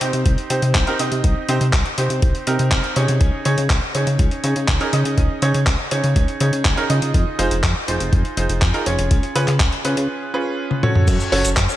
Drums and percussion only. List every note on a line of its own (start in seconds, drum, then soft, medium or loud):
0.01 closed hi-hat medium
0.13 closed hi-hat medium
0.26 kick loud
0.26 closed hi-hat medium
0.38 closed hi-hat soft
0.50 closed hi-hat medium
0.62 closed hi-hat medium
0.75 kick loud
0.75 clap loud
0.75 closed hi-hat medium
0.87 closed hi-hat soft
0.99 closed hi-hat medium
1.12 closed hi-hat soft
1.24 kick loud
1.24 closed hi-hat medium
1.49 closed hi-hat medium
1.61 closed hi-hat soft
1.73 kick loud
1.73 clap loud
1.73 closed hi-hat medium
1.86 closed hi-hat soft
1.98 closed hi-hat medium
2.10 closed hi-hat soft
2.22 kick loud
2.22 closed hi-hat medium
2.35 closed hi-hat soft
2.47 closed hi-hat medium
2.59 closed hi-hat soft
2.72 kick loud
2.72 clap loud
2.72 closed hi-hat medium
2.84 closed hi-hat soft
2.96 closed hi-hat medium
3.08 closed hi-hat medium
3.21 kick loud
3.21 closed hi-hat medium
3.45 closed hi-hat medium
3.58 closed hi-hat soft
3.70 kick loud
3.70 clap loud
3.70 closed hi-hat medium
3.95 closed hi-hat medium
4.07 closed hi-hat soft
4.19 kick loud
4.19 closed hi-hat medium
4.31 closed hi-hat soft
4.44 closed hi-hat medium
4.56 closed hi-hat soft
4.68 kick loud
4.68 clap loud
4.68 closed hi-hat medium
4.81 closed hi-hat soft
4.93 closed hi-hat medium
5.05 closed hi-hat soft
5.18 kick loud
5.18 closed hi-hat medium
5.42 closed hi-hat medium
5.54 closed hi-hat soft
5.67 kick loud
5.67 clap loud
5.67 closed hi-hat medium
5.91 closed hi-hat medium
6.04 closed hi-hat soft
6.16 kick loud
6.16 closed hi-hat medium
6.28 closed hi-hat soft
6.40 closed hi-hat medium
6.53 closed hi-hat soft
6.65 kick loud
6.65 clap loud
6.65 closed hi-hat medium
6.77 closed hi-hat soft
6.90 closed hi-hat medium
7.02 closed hi-hat soft
7.14 kick loud
7.14 closed hi-hat medium
7.39 closed hi-hat medium
7.51 closed hi-hat medium
7.63 kick loud
7.63 clap loud
7.63 closed hi-hat medium
7.88 closed hi-hat medium
8.00 closed hi-hat soft
8.13 kick loud
8.13 closed hi-hat medium
8.25 closed hi-hat soft
8.37 closed hi-hat medium
8.49 closed hi-hat soft
8.62 kick loud
8.62 clap loud
8.62 closed hi-hat medium
8.74 closed hi-hat soft
8.86 closed hi-hat medium
8.99 closed hi-hat soft
9.11 kick loud
9.11 closed hi-hat medium
9.23 closed hi-hat soft
9.36 closed hi-hat medium
9.48 clap soft
9.48 closed hi-hat medium
9.60 kick loud
9.60 clap loud
9.60 closed hi-hat medium
9.72 closed hi-hat soft
9.85 closed hi-hat medium
9.97 closed hi-hat soft
10.71 high tom medium
10.83 mid tom medium
10.95 mid tom medium
11.08 kick loud
11.08 closed hi-hat medium
11.08 crash loud
11.08 cabasa soft
11.20 cabasa soft
11.32 open hi-hat loud
11.45 closed hi-hat medium
11.45 cabasa medium
11.57 kick loud
11.57 clap loud
11.57 closed hi-hat medium
11.57 cabasa soft
11.69 cabasa soft